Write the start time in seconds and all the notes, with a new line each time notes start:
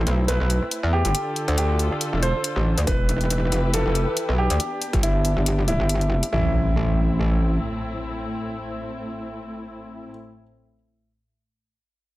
Already playing: A3 C4 E4 C5
0.07 B1, closed hi-hat
0.28 B4, closed hi-hat
0.40 B1
0.50 closed hi-hat
0.71 closed hi-hat
0.83 E2
0.93 G4
1.05 G1, closed hi-hat
1.15 D3 D4 F4 A4, closed hi-hat
1.36 closed hi-hat
1.48 D2, closed hi-hat
1.58 G4, closed hi-hat
1.79 closed hi-hat
2.01 closed hi-hat
2.13 E1
2.23 C5, closed hi-hat
2.44 closed hi-hat
2.56 A1
2.78 D2, closed hi-hat
2.87 E1 E3 E4 G4 B4, kick, closed hi-hat
3.09 E1, closed hi-hat
3.21 closed hi-hat
3.30 closed hi-hat
3.52 F1, closed hi-hat
3.74 A4, closed hi-hat
3.85 F1
3.95 closed hi-hat
4.17 closed hi-hat
4.29 B1
4.38 G4
4.50 D2, closed hi-hat
4.60 B3 D4 G4, closed hi-hat
4.82 closed hi-hat
4.93 G1, kick, closed hi-hat
5.03 E4, closed hi-hat
5.25 closed hi-hat
5.37 G1
5.46 closed hi-hat
5.68 E4, closed hi-hat
5.80 G1
5.89 closed hi-hat
6.01 closed hi-hat
6.23 closed hi-hat
6.32 A1 A2 A3 C4 E4, impact